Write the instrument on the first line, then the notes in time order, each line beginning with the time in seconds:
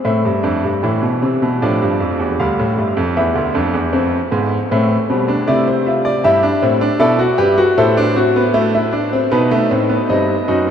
grand piano
0.05 A2 A3 C4 E5
0.25 G2
0.43 F2 D4
0.64 G2
0.83 A2 E3 E4
1.02 B2
1.22 C3 C4
1.42 B2
1.62 A2 F3 D4 D5
1.82 G2
2.00 F2
2.20 E2
2.40 D2 G3 F5
2.59 A2
2.78 G2 A3
2.97 F2
3.17 E2 B3 E4 E5
3.35 D2
3.54 F2 D4
3.74 E2
3.93 F2 C4
4.31 G#2 B3
4.71 A2 A3 C4
5.10 B2 G3 C4
5.28 D4
5.48 C3 A3 E4 D5
5.67 C5
5.86 F4 E5
6.05 D5
6.24 G2 E4 G4 E5
6.43 D4
6.62 A2 C4
6.81 D4
7.00 B2 E4 A4 D5
7.19 F#4
7.38 G2 G4 B4
7.58 F#4
7.77 A2 E4 A4 C5
7.97 D4
8.16 C4 F#4
8.36 B3
8.54 A3 E4
8.75 E4
8.93 D4
9.13 C4
9.31 B2 B3 D#4 B4
9.51 A3
9.71 A2 C4
9.89 B3
10.09 G2 C4 D#4 D#5
10.48 F#2 D#4 F#4